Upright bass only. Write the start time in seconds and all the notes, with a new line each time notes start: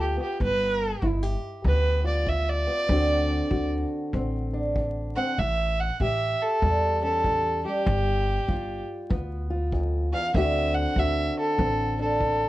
Already playing: D2
0.41 G1
1.02 G1
1.65 D2
2.89 D2
3.51 D2
4.14 A1
5.39 A1
6.00 A1
6.62 E2
7.86 G1
8.49 G1
9.11 D2
10.35 D2
10.96 D2
11.59 A1